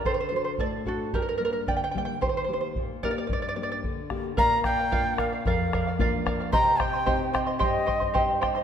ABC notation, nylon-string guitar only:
X:1
M:2/4
L:1/8
Q:1/4=111
K:Gm
V:1 name="Nylon-string guitar"
D, [D^FA] A,, [DFA] | G,, [G,B,D] D, [G,B,D] | E, [B,EG] B,, [B,EG] | G,, [B,DG] D, [B,DG] |
[K:Bb] B,,2 [B,DF]2 | F,,2 [B,DF]2 | C,2 [CEG]2 | G,,2 [CEG]2 |]